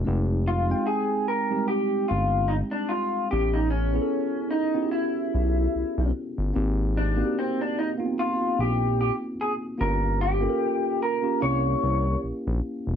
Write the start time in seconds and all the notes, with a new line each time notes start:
0.05 F1 G#3 C4 D#4 G4
0.48 F4
0.70 G#3 C4 D#4 G5
0.87 G#4
1.28 A#4
1.50 G3 C4 D#4 G4
1.56 G#3
1.68 G4
2.08 G1 F4
2.48 D#4
2.71 D4
2.89 F4
3.31 A1 B3 C#4 E4 G4
3.53 D#4
3.70 C#4
3.94 B3 C#4 E4 G#4
4.02 A4
4.51 D#4
4.74 B3 C#4 E4 F#4
4.83 G4
4.92 E4
5.34 B1
5.75 B1
5.97 B1
6.38 G1
6.53 G#1 A#3 C4 D#4 G4
6.97 D4
7.16 A#3 C4 D#4 F#4
7.25 G4
7.39 C4
7.61 D4
7.79 D#4
7.98 A#3 B3 D#4 F4
8.05 C4
8.19 F4
8.58 A#1 G4
9.01 G4
9.41 G#4
9.78 G1 A#3 C#4 F4 G4 A#4
10.21 G4
10.41 A#3 C#4 F4 A4
10.49 A#4
11.03 A#4
11.22 A#3 C#4 F4 G4
11.40 C2 A#3 C#4 E4 G4 C#5
11.83 C2
12.23 A#1
12.47 A#1
12.86 E1